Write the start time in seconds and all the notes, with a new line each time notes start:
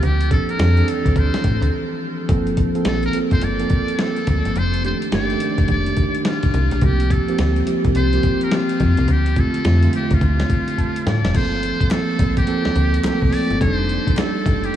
0.03 D2 G4, closed hi-hat
0.21 closed hi-hat
0.30 F3 C4 D4 A4, kick, closed hi-hat
0.49 A#4, closed hi-hat
0.59 F2 F3 C4 D4 A4, snare, closed hi-hat
0.77 E3 C4 D4 A4, closed hi-hat
0.83 F3
0.88 A4, closed hi-hat
1.05 D2, kick, closed hi-hat
1.16 D2 C5, kick, closed hi-hat
1.34 snare, closed hi-hat
1.44 A2, kick, closed hi-hat
1.61 D2, closed hi-hat
2.29 G1 F3 A#3 C4 A4, kick, closed hi-hat
2.47 closed hi-hat
2.57 kick, closed hi-hat
2.75 F3 A#3 C4 A4, closed hi-hat
2.85 A#1 A4, snare, closed hi-hat
3.03 A#4, closed hi-hat
3.13 F3 A#3 C4 A4, closed hi-hat
3.31 G1 C5, kick, closed hi-hat
3.41 G1 D5, closed hi-hat
3.59 F3 A#3 C4 A4, closed hi-hat
3.70 kick, closed hi-hat
3.88 closed hi-hat
3.98 F3 A#3 C4 A4, snare, closed hi-hat
4.16 closed hi-hat
4.27 D2, kick, closed hi-hat
4.45 G1, closed hi-hat
4.56 F1 C5, closed hi-hat
4.74 closed hi-hat
4.84 D#3 A3 D4 G4 C5, closed hi-hat
5.02 closed hi-hat
5.12 G1 D#3 A3 D4 G4 D5, snare, closed hi-hat
5.30 D#3 A3 D4 G4, closed hi-hat
5.40 closed hi-hat
5.58 F1, kick, closed hi-hat
5.68 F1 D5, kick, closed hi-hat
5.86 closed hi-hat
5.97 kick, closed hi-hat
6.15 closed hi-hat
6.25 F4, snare, closed hi-hat
6.43 kick, closed hi-hat
6.54 C2, closed hi-hat
6.71 A#1, closed hi-hat
6.81 C2 F3 A#3 C4 G4, kick, closed hi-hat
7.00 closed hi-hat
7.10 A4, kick, closed hi-hat
7.28 F3 A#3 C4 G4, closed hi-hat
7.38 D2, snare, closed hi-hat
7.56 closed hi-hat
7.67 F3 A#3 C4 G4, closed hi-hat
7.85 C2, kick, closed hi-hat
7.95 C2 C5, closed hi-hat
8.13 F3 A#3 C4 G4, closed hi-hat
8.23 kick, closed hi-hat
8.41 A#4, closed hi-hat
8.51 F3 A#3 C4 F4 G4, snare, closed hi-hat
8.69 closed hi-hat
8.80 F2, kick, closed hi-hat
8.97 C2, closed hi-hat
9.08 D2 G4, closed hi-hat
9.26 closed hi-hat
9.36 D3 A3 C4 F4 A4, kick, closed hi-hat
9.54 closed hi-hat
9.64 F2 D3 A3 C4 F4, snare, closed hi-hat
9.82 D3 A3 C4 F4, closed hi-hat
9.93 G4, closed hi-hat
10.11 D2 F4, kick, closed hi-hat
10.21 D2, kick, closed hi-hat
10.40 snare, closed hi-hat
10.50 kick, closed hi-hat
10.68 closed hi-hat
10.78 A5, kick, closed hi-hat
10.96 closed hi-hat
11.06 A2 D5 F5, snare, closed hi-hat
11.24 F1, snare, closed hi-hat
11.34 G1 F3 A#3 C4 A4 C5, kick, closed hi-hat, crash
11.63 closed hi-hat
11.80 kick, closed hi-hat
11.91 F3 A#3 C4 A4, snare, clap, closed hi-hat
12.19 A#1, kick, closed hi-hat
12.37 G4, kick, closed hi-hat
12.47 F3 A#3 C4 A4, closed hi-hat
12.65 D2, snare
12.76 D2, closed hi-hat
12.94 closed hi-hat
13.03 C2 F3 A3 C4 A4, snare, clap, closed hi-hat
13.10 A#3
13.22 C2, kick
13.32 D5, open hi-hat
13.50 G1, closed hi-hat
13.61 F1 G3 D4 D#4 A4 C5, kick, closed hi-hat
13.89 closed hi-hat
14.07 kick, closed hi-hat
14.17 G3 D4 D#4 A4, snare, clap, closed hi-hat
14.46 G1, kick, closed hi-hat
14.64 G4, closed hi-hat